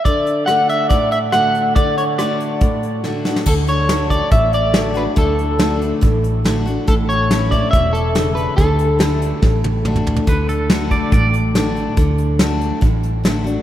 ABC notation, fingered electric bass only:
X:1
M:4/4
L:1/8
Q:1/4=141
K:D
V:1 name="Fingered electric bass" clef=bass
z8 | z8 | D,,4 A,,,4 | D,,4 A,,,4 |
A,,,4 E,,,4 | D,,4 A,,,4 | D,,4 A,,,4 | D,,4 A,,,4 |]